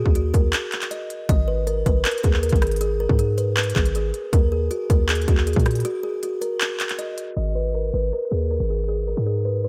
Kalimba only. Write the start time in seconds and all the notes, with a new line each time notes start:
Already playing: G#4
0.16 F#4
0.34 A#4
0.91 D#5
1.29 D#5
1.48 B4
1.67 A#4
1.86 B4
2.05 A#4
2.23 G#4
2.43 A#4
2.62 G#4
2.81 G#4
3.00 A#4
3.19 G#4
3.38 B4
3.57 B4
3.75 G#4
3.95 G#4
4.33 A#4
4.52 G#4
4.71 F#4
4.90 A#4
5.09 G#4
5.28 F#4
5.47 G#4
5.66 F#4
5.85 F#4
6.03 G#4
6.23 F#4
6.41 A#4
6.99 D#5
7.37 D#5
7.55 B4
7.75 A#4
7.94 B4
8.13 A#4
8.31 G#4
8.51 A#4
8.70 G#4
8.88 G#4
9.08 A#4
9.26 G#4
9.45 B4
9.64 B4